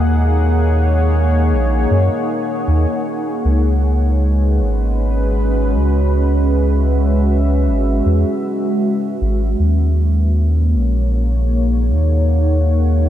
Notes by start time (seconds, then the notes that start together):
Already playing: D#2 A#3 D#4 G#4 C#5 F#5
1.52 A#1
1.91 F#2
2.68 D#2
3.45 C#2 G#3
3.87 B4
4.07 C#4
4.60 G#1
4.84 F#4
5.75 C#2
6.23 E5
7.67 G#1
8.06 E2
9.21 G#1
9.59 D#2 A#3
10.07 G#4 C#5
10.42 D#4
10.75 A#1
11.17 F#5
11.90 D#2